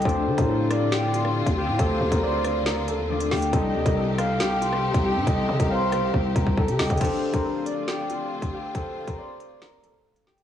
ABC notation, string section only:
X:1
M:4/4
L:1/8
Q:1/4=138
K:Dphr
V:1 name="String section"
[D,A,CF]8- | [D,A,CF]8 | [C,CEG]8- | [C,CEG]8 |
[D,,D,CF]8- | [D,,D,CF]8 |]